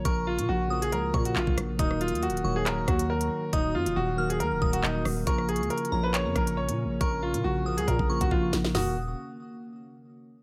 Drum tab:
HH |x--------x-----------x--x--------x--------x-----|x-----x-x-x-x-x-x-------x-----x--x-----x--------|x--------x-----------x--x--------x--------o-----|x-----x-x-x-x-x-x-------x-----x--x-----x--------|
CP |------------------------------------x-----------|------------------------x-----------------------|------------------------------------x-----------|------------------------x-----------------------|
SD |------------------------------------------r-----|---r--------------------------r-----------------|------------------------------------------r-----|---r--------------------------r-----------------|
FT |------------------------------------------------|------------------------------------------------|------------------------------------------------|------------------------------------------------|
BD |o-----------------------------o--------o--------|o-----------------------------o-----------------|o-----------------------------o-----------------|o-----------------------------o-----------------|

HH |x--------x-----------x--x--------x--------x-----|o-----------------------------------------------|
CP |------------------------------------------------|------------------------------------------------|
SD |------------------------------------------o--o--|o-----------------------------------------------|
FT |------------------------------------------------|o-----------------------------------------------|
BD |o-----------------------o--o-----o--o-----------|------------------------------------------------|